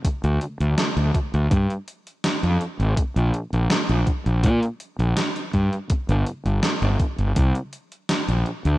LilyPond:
<<
  \new Staff \with { instrumentName = "Fingered electric bass" } { \clef bass \time 4/4 \key bes \mixolydian \tempo 4 = 82 r16 d,16 r16 d,16 r16 d,16 r16 d,16 g,16 r4 f,16 r16 aes,,16 | r16 bes,,16 r16 bes,,16 r16 bes,,16 r16 bes,,16 bes,16 r8 bes,,16 r8 g,16 r16 | r16 g,,16 r16 g,,16 r16 g,,16 r16 g,,16 c,16 r4 bes,,16 r16 d,16 | }
  \new DrumStaff \with { instrumentName = "Drums" } \drummode { \time 4/4 <hh bd>16 hh16 hh16 hh16 <hh sn>16 hh16 <hh bd>16 hh16 <hh bd>16 hh16 hh16 hh16 <hh sn>16 hh16 hh16 hh16 | <hh bd>16 hh16 hh16 hh16 <hh sn>16 hh16 <hh bd>16 hh16 <hh bd>16 hh16 hh16 hh16 <hh sn>16 hh16 <hh bd>16 hh16 | <hh bd>16 hh16 hh16 hh16 <hh sn>16 hh16 <hh bd>16 hh16 <hh bd>16 hh16 hh16 hh16 <hh sn>16 hh16 hh16 hh16 | }
>>